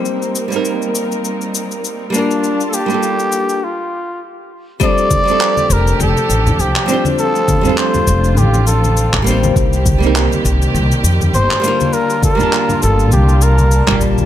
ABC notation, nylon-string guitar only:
X:1
M:4/4
L:1/16
Q:"Swing 16ths" 1/4=101
K:Fmix
V:1 name="Nylon-string guitar"
[G,B,CEc]3 [G,B,CEB]8- [G,B,CEB]3 [G,B,DFB]2- | [G,B,DFB]3 [G,B,DFA]4- [G,B,DFA] z8 | [G,CDFA]3 [G,CDFA]8- [G,CDFA]3 [G,CDFc]2- | [G,CDFc]3 [G,CDFA]8- [G,CDFA]3 [G,B,CEc]2- |
[G,B,CEc]3 [G,B,CEB]8- [G,B,CEB]3 [G,B,DFB]2- | [G,B,DFB]3 [G,B,DFa]8- [G,B,DFa]2 [G,B,DFG]3 |]